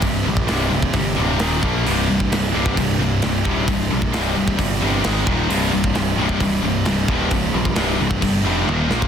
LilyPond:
<<
  \new Staff \with { instrumentName = "Distorted electric guitar" } { \clef bass \time 4/4 \key c \minor \tempo 4 = 132 <c, g,>8 <c, g,>8 <c, g, c>8 <c, g,>8 <c, g,>8 <c, g, c>8 <ees, bes, ees>8 <bes, f bes>8 | <c, g, c>8 <c, g,>8 <c, g,>8 <c, g, c>8 <c, g,>8 <c, g,>8 <c, g,>8 <c, g, c>8 | <c, g,>8 <c, g,>8 <c, g, c>8 <c, g,>8 <c, g,>8 <c, g, c>8 <aes, ees aes>8 <ees, bes, ees>8 | <c, g, c>8 <c, g,>8 <c, g,>8 <c, g, c>8 <c, g,>8 <c, g,>8 <c, g,>8 <c, g, c>8 |
<c, g,>8 <c, g,>8 <c, g, c>8 <c, g,>8 <c, g,>8 <c, g, c>8 <ees, bes, ees>8 <bes, f bes>8 | }
  \new Staff \with { instrumentName = "Distorted electric guitar" } { \clef bass \time 4/4 \key c \minor <c, g,>8 <c, g,>8 <c, g, c>8 <c, g,>8 <c, g,>8 <c, g, c>8 <ees, bes, ees>8 <bes, f bes>8 | <c, g, c>8 <c, g,>8 <c, g,>8 <c, g, c>8 <c, g,>8 <c, g,>8 <c, g,>8 <c, g, c>8 | <c, g,>8 <c, g,>8 <c, g, c>8 <c, g,>8 <c, g,>8 <c, g, c>8 <aes, ees aes>8 <ees, bes, ees>8 | <c, g, c>8 <c, g,>8 <c, g,>8 <c, g, c>8 <c, g,>8 <c, g,>8 <c, g,>8 <c, g, c>8 |
<c, g,>8 <c, g,>8 <c, g, c>8 <c, g,>8 <c, g,>8 <c, g, c>8 <ees, bes, ees>8 <bes, f bes>8 | }
  \new Staff \with { instrumentName = "Distorted electric guitar" } { \clef bass \time 4/4 \key c \minor <c, g, c>4 <c, g, c>8 <c, g, c>8 <c, g, c>4 <ees, bes, ees>8 <bes, f bes>8 | <c, g, c>4 <c, g, c>8 <c, g, c>8 <c, g, c>4 <c, g, c>8 <c, g, c>8 | <c, g, c>4 <c, g, c>8 <c, g, c>8 <c, g, c>4 <aes, ees aes>8 <ees, bes, ees>8 | <c, g, c>4 <c, g, c>8 <c, g, c>8 <c, g, c>4 <c, g, c>8 <c, g, c>8 |
<c, g, c>4 <c, g, c>8 <c, g, c>8 <c, g, c>4 <ees, bes, ees>8 <bes, f bes>8 | }
  \new Staff \with { instrumentName = "Picked electric bass" } { \clef bass \time 4/4 \key c \minor c,,8 bes,,8 c,,8 c,,8 g,,8 d,,8 ees,,8 bes,,8 | c,,8 c,,8 c,,8 c,,8 c,,8 c,,8 c,,8 ees,,8 | c,,8 bes,,8 c,,8 c,,8 g,,8 g,,8 aes,,8 ees,,8 | c,,8 c,,8 c,,8 c,,8 c,,8 c,,8 c,,8 ees,,8 |
c,,8 bes,,8 c,,8 c,,8 g,,8 f,,8 ees,,8 bes,,8 | }
  \new DrumStaff \with { instrumentName = "Drums" } \drummode { \time 4/4 <hho bd>8. bd16 <hho sn>8. bd16 <hho bd>4 <hho sn>8 bd8 | hho8. bd16 <hho sn>8. bd16 <hho bd>4 <hho sn>8 bd8 | <hho bd>8. bd16 <hho sn>8. bd16 <hho bd>4 <hho sn>8 bd8 | hho8. bd16 <hho sn>8. bd16 <hho bd>4 <hho sn>8 bd8 |
<hho bd>8. bd16 <hho sn>8. bd16 <hho bd>4 tommh8 sn16 bd16 | }
>>